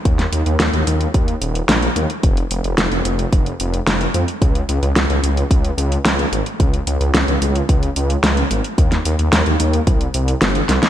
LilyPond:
<<
  \new Staff \with { instrumentName = "Detuned saw bass" } { \clef bass \time 4/4 \key des \lydian \tempo 4 = 110 ees,16 r16 ees,16 ees,16 ees,16 ees,16 ees,16 r16 ees,16 r16 ees,,16 r16 bes,,16 r16 ees,16 r16 | f,,16 r16 f,,16 f,,16 f,,16 f,,16 f,,16 r16 f,,16 r16 f,,16 r16 f,,16 r16 f,16 r16 | des,16 r16 des,16 des,16 des,16 des,16 des,16 r16 des,16 r16 des,16 r16 des,16 r16 aes,,16 r16 | des,16 r16 des,16 des,16 des,16 des,16 des,16 r16 des,16 r16 des,16 r16 des,16 r16 aes,,16 r16 |
ees,16 r16 ees,16 ees,16 ees,16 ees,16 ees,16 r16 c,16 r16 c,16 r16 g,,16 r16 c,16 r16 | }
  \new DrumStaff \with { instrumentName = "Drums" } \drummode { \time 4/4 <hh bd>16 <hh sn>16 hh16 hh16 <hh sn>16 hh16 hh16 hh16 <hh bd>16 hh16 hh16 hh16 <hh sn>16 hh16 hh16 hh16 | <hh bd>16 hh16 hh16 hh16 <hh sn>16 hh16 hh16 hh16 <hh bd>16 hh16 hh16 hh16 <hh sn>16 hh16 hh16 hh16 | <hh bd>16 hh16 hh16 hh16 <hh sn>16 hh16 hh16 hh16 <hh bd>16 hh16 hh16 hh16 <hh sn>16 hh16 hh16 hh16 | <hh bd>16 hh16 hh16 hh16 <hh sn>16 hh16 hh16 hh16 <hh bd>16 hh16 hh16 hh16 <hh sn>16 hh16 hh16 hh16 |
<hh bd>16 <hh sn>16 hh16 hh16 <hh sn>16 hh16 hh16 hh16 <hh bd>16 hh16 hh16 hh16 <hh sn>16 hh16 <hh sn>16 <hh sn>16 | }
>>